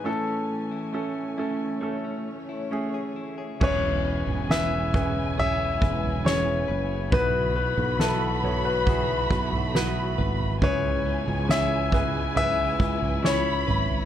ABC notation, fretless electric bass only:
X:1
M:4/4
L:1/16
Q:1/4=68
K:E
V:1 name="Fretless electric bass" clef=bass
z16 | E,,,3 E,,,6- E,,, E,,,4 F,,,2 | B,,,3 B,,,6- B,,, B,,,4 G,,,2 | C,,3 C,,6- C,, C,,4 G,,,2 |]